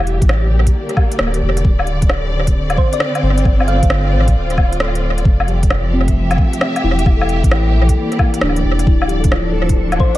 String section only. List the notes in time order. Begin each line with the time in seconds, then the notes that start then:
Already playing: D3 G4 E5
0.18 D5
0.46 A#3
2.23 C4
2.76 F4
5.25 F3
5.45 G4
5.86 A3
6.05 E5
7.07 E3
7.61 A#3
7.90 D5
8.88 F3
9.19 D4
9.95 E5
10.00 C5